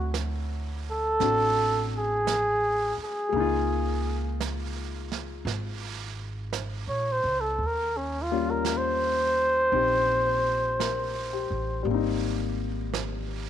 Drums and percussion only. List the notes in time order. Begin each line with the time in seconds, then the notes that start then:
0.14 brush sweep, snare, hi-hat pedal
1.20 brush sweep, snare
2.27 brush sweep, snare, hi-hat pedal
3.34 brush sweep
4.41 brush sweep, snare, hi-hat pedal
5.12 snare
5.47 brush sweep, snare
6.53 brush sweep, snare, hi-hat pedal
7.59 brush sweep
8.65 brush sweep, snare, hi-hat pedal
9.73 brush sweep
10.80 brush sweep, snare, hi-hat pedal
11.87 brush sweep
12.94 brush sweep, snare, hi-hat pedal